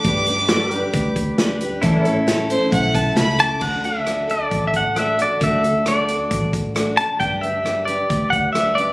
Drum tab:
CC |--------|--------|x-------|--------|
HH |xxxxxxxx|xxxxxxxx|-xxxxxxx|xxxxxxxx|
SD |--o---o-|--o---o-|--r---r-|--r---r-|
BD |o---oo--|o---oo--|o---oo--|o---oo--|

CC |--------|
HH |xxxxxxxx|
SD |--r---r-|
BD |o---oo--|